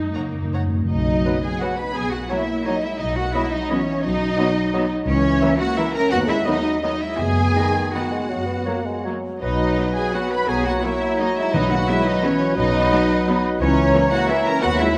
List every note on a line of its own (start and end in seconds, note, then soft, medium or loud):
0.00 0.08 F#2 soft
0.00 0.14 G#3 medium
0.00 0.73 D#4 medium
0.09 0.16 F#2 soft
0.13 0.25 F#2 soft
0.13 0.53 A#3 medium
0.13 0.23 C#5 soft
0.13 0.23 F#5 soft
0.13 0.21 A#5 soft
0.26 0.33 F#2 soft
0.34 0.41 F#2 soft
0.42 0.49 F#2 soft
0.51 0.58 F#2 medium
0.51 0.73 G#3 medium
0.51 0.62 C#5 soft
0.51 0.62 F#5 soft
0.51 0.61 A#5 soft
0.59 0.66 F#2 medium
0.67 0.73 F#2 medium
0.73 0.81 F#2 medium
0.73 0.90 F#3 medium
0.83 0.89 F#2 medium
0.89 1.20 B1 medium
0.89 1.41 F#3 medium
0.89 1.41 D#4 medium
0.89 1.40 D#5 medium
0.89 1.41 D#5 medium
1.26 1.39 F#3 soft
1.26 1.34 F#3 soft
1.26 1.34 B3 soft
1.26 1.39 B4 soft
1.26 1.33 B5 soft
1.43 1.62 B3 medium
1.43 1.62 G#4 medium
1.43 1.61 G#5 medium
1.43 1.62 G#5 medium
1.61 1.74 F#3 soft
1.61 1.70 F#3 soft
1.61 1.70 B3 soft
1.61 1.79 B3 medium
1.61 1.79 F#4 medium
1.61 1.74 B4 soft
1.61 1.79 F#5 medium
1.61 1.69 B5 soft
1.76 1.95 D#4 medium
1.76 1.96 B4 medium
1.76 1.94 B5 medium
1.76 1.95 B5 medium
1.94 2.25 B1 medium
1.94 2.12 B3 medium
1.94 2.12 G#4 medium
1.94 2.12 G#5 medium
2.11 2.29 A#3 medium
2.11 2.30 F#4 medium
2.11 2.30 F#5 medium
2.29 2.44 F#3 medium
2.29 2.39 F#3 soft
2.29 2.66 A#3 medium
2.29 2.39 A#3 soft
2.29 2.66 E4 medium
2.29 2.43 C#5 soft
2.29 2.67 E5 medium
2.29 2.37 A#5 soft
2.66 2.84 F#3 medium
2.66 2.79 F#3 soft
2.66 2.77 F#3 soft
2.66 2.77 A#3 soft
2.66 2.83 D#4 medium
2.66 2.78 C#5 soft
2.66 2.84 D#5 medium
2.66 2.73 A#5 medium
2.83 3.01 G#3 medium
2.83 3.00 E4 medium
2.83 3.00 E5 medium
2.99 3.29 B1 medium
2.99 3.18 F#3 medium
2.99 3.17 D#4 medium
2.99 3.16 D#5 medium
2.99 3.17 D#5 medium
3.15 3.26 A#3 medium
3.15 3.35 F#4 medium
3.15 3.33 F#5 medium
3.15 3.34 F#5 medium
3.33 3.47 F#3 medium
3.33 3.43 F#3 medium
3.33 3.42 G#3 medium
3.33 3.43 B3 medium
3.33 3.52 E4 medium
3.33 3.48 D#5 medium
3.33 3.52 E5 medium
3.33 3.53 E5 medium
3.33 3.42 B5 medium
3.51 3.60 F#3 medium
3.51 3.71 D#4 medium
3.51 3.70 D#5 medium
3.70 4.03 E3 medium
3.70 3.83 F#3 medium
3.70 3.80 F#3 medium
3.70 3.80 B3 medium
3.70 4.04 C#4 medium
3.70 4.04 C#5 medium
3.70 3.82 D#5 medium
3.70 3.77 B5 medium
4.04 4.32 B1 medium
4.04 4.92 F#3 medium
4.04 4.90 D#4 loud
4.04 4.89 D#5 medium
4.04 4.91 D#5 medium
4.38 4.51 F#3 medium
4.38 4.47 F#3 medium
4.38 4.47 B3 medium
4.38 4.51 D#5 medium
4.38 4.45 B5 medium
4.74 4.86 F#3 medium
4.74 4.83 F#3 medium
4.74 4.84 B3 medium
4.74 4.86 D#5 medium
4.74 4.80 B5 medium
5.07 5.36 C#2 medium
5.07 5.57 E3 medium
5.07 5.57 C#4 loud
5.07 5.56 C#5 medium
5.07 5.57 C#5 medium
5.42 5.55 E3 medium
5.42 5.50 E3 medium
5.42 5.51 A#3 medium
5.42 5.55 E5 medium
5.42 5.50 A#5 medium
5.59 5.77 A#3 medium
5.59 5.78 F#4 loud
5.59 5.77 F#5 medium
5.59 5.78 F#5 medium
5.76 5.90 E3 medium
5.76 5.87 E3 medium
5.76 5.86 A#3 medium
5.76 5.95 E4 medium
5.76 5.95 E5 medium
5.76 5.90 E5 medium
5.76 5.95 E5 medium
5.76 5.84 A#5 medium
5.94 6.12 C#4 medium
5.94 6.12 A#4 loud
5.94 6.12 A#5 medium
5.94 6.02 A#5 medium
6.11 6.41 D#2 medium
6.11 6.29 B3 loud
6.11 6.19 F#4 loud
6.11 6.18 F#5 medium
6.11 6.28 F#5 medium
6.26 6.45 G#3 medium
6.26 6.36 E4 medium
6.26 6.46 E5 medium
6.26 6.47 E5 medium
6.43 6.79 F#3 medium
6.43 6.59 F#3 medium
6.43 6.55 B3 medium
6.43 6.82 D#4 medium
6.43 6.59 D#5 medium
6.43 6.82 D#5 medium
6.43 6.83 D#5 medium
6.43 6.53 B5 medium
6.47 6.55 D#3 medium
6.80 6.92 D#3 medium
6.80 7.00 F#3 medium
6.80 6.97 F#3 medium
6.80 6.91 B3 medium
6.80 7.02 D#4 medium
6.80 7.02 D#5 medium
6.80 6.97 D#5 medium
6.80 7.02 D#5 medium
6.80 6.90 B5 medium
6.99 7.18 G#3 medium
6.99 7.20 E4 medium
6.99 7.20 E5 medium
7.16 7.72 F#2 medium
7.16 7.51 F#2 medium
7.16 7.91 B3 medium
7.16 7.95 G#4 medium
7.16 7.93 G#5 medium
7.21 7.95 G#5 medium
7.56 8.13 D#3 medium
7.56 7.65 D#3 soft
7.56 7.65 B3 soft
7.56 7.70 D#5 soft
7.56 7.64 B5 soft
7.94 8.03 D#3 soft
7.94 9.03 B3 medium
7.94 8.03 B3 soft
7.94 9.05 F#4 medium
7.94 8.08 D#5 soft
7.94 9.04 F#5 medium
7.94 9.06 F#5 medium
7.94 8.01 B5 soft
8.12 8.31 G#3 medium
8.30 8.61 F#2 medium
8.30 8.48 F#3 medium
8.46 8.67 B3 medium
8.66 8.75 F#3 soft
8.66 8.88 A#3 medium
8.66 8.76 A#3 soft
8.66 8.80 C#5 soft
8.66 8.74 A#5 soft
8.86 9.06 G#3 medium
9.05 9.41 F#3 medium
9.05 9.14 F#3 soft
9.05 9.14 A#3 soft
9.05 9.19 C#5 soft
9.05 9.12 A#5 soft
9.41 9.72 B1 medium
9.41 10.10 F#3 medium
9.41 9.92 F#3 medium
9.41 9.92 D#4 medium
9.41 10.10 B4 medium
9.41 9.92 D#5 medium
9.41 10.10 B5 medium
9.77 9.86 F#3 soft
9.77 9.85 B3 medium
9.95 10.13 B3 medium
9.95 10.14 G#4 medium
9.95 10.14 G#5 medium
10.13 10.22 F#3 medium
10.13 10.48 F#3 medium
10.13 10.22 B3 medium
10.13 10.31 B3 medium
10.13 10.32 F#4 medium
10.13 10.48 B4 medium
10.13 10.31 F#5 medium
10.13 10.32 F#5 medium
10.13 10.48 B5 medium
10.30 10.48 D#4 medium
10.30 10.49 B4 medium
10.30 10.48 B5 medium
10.30 10.49 B5 medium
10.47 10.78 B1 medium
10.47 10.83 F#3 medium
10.47 10.65 B3 medium
10.47 10.66 G#4 medium
10.47 10.83 C#5 medium
10.47 10.55 G#5 medium
10.47 10.66 G#5 medium
10.47 10.83 A#5 medium
10.64 10.81 A#3 medium
10.64 10.84 F#4 medium
10.64 10.83 F#5 medium
10.64 10.84 F#5 medium
10.82 10.92 F#3 medium
10.82 11.53 F#3 medium
10.82 11.18 A#3 medium
10.82 10.92 A#3 medium
10.82 11.20 E4 medium
10.82 11.56 C#5 medium
10.82 11.20 E5 medium
10.82 11.53 A#5 medium
11.19 11.37 F#3 medium
11.19 11.28 F#3 medium
11.19 11.28 A#3 medium
11.19 11.37 D#4 medium
11.19 11.37 D#5 medium
11.35 11.53 G#3 medium
11.35 11.54 E4 medium
11.35 11.54 E5 medium
11.52 11.83 B1 medium
11.52 12.03 B2 medium
11.52 11.70 F#3 medium
11.52 12.56 F#3 medium
11.52 11.71 D#4 loud
11.52 12.57 B4 medium
11.52 11.71 D#5 medium
11.52 12.56 B5 medium
11.69 11.88 A#3 medium
11.69 11.89 F#4 medium
11.69 11.88 F#5 medium
11.69 11.78 F#5 medium
11.86 11.96 F#3 medium
11.86 12.05 G#3 medium
11.86 11.97 B3 medium
11.86 12.07 E4 medium
11.86 12.06 E5 medium
11.86 11.96 E5 medium
12.04 12.23 F#3 medium
12.04 12.25 D#4 medium
12.04 12.24 D#5 medium
12.23 12.57 E3 medium
12.23 12.33 F#3 medium
12.23 12.32 B3 medium
12.23 12.58 C#4 medium
12.23 12.58 C#5 medium
12.54 12.86 B1 medium
12.54 13.43 F#3 medium
12.54 13.59 F#3 medium
12.54 13.43 D#4 loud
12.54 13.59 B4 medium
12.54 13.42 D#5 medium
12.54 13.59 B5 medium
12.59 13.43 D#5 medium
12.91 12.99 F#3 medium
12.91 12.99 B3 medium
13.27 13.35 F#3 medium
13.27 13.35 B3 medium
13.59 13.89 C#2 medium
13.59 14.08 E3 medium
13.59 14.26 E3 medium
13.59 14.09 C#4 loud
13.59 14.08 C#5 medium
13.59 14.26 C#5 medium
13.59 14.09 C#5 loud
13.59 14.26 A#5 medium
13.95 14.03 E3 medium
13.95 14.03 A#3 medium
14.11 14.28 A#3 medium
14.11 14.30 F#4 loud
14.11 14.19 F#5 medium
14.11 14.30 F#5 medium
14.29 14.37 E3 medium
14.29 14.65 E3 medium
14.29 14.46 A#3 medium
14.29 14.37 A#3 medium
14.29 14.47 E4 medium
14.29 14.65 C#5 medium
14.29 14.47 E5 medium
14.29 14.46 E5 medium
14.29 14.63 A#5 medium
14.45 14.64 C#4 medium
14.45 14.63 A#4 loud
14.45 14.63 A#5 medium
14.62 14.92 D#2 medium
14.62 14.96 F#3 medium
14.62 14.70 B3 medium
14.62 14.80 F#4 loud
14.62 14.96 B4 medium
14.62 14.79 F#5 medium
14.62 14.79 F#5 loud
14.62 14.98 B5 medium
14.78 14.87 G#3 medium
14.78 14.98 E4 loud
14.78 14.97 E5 medium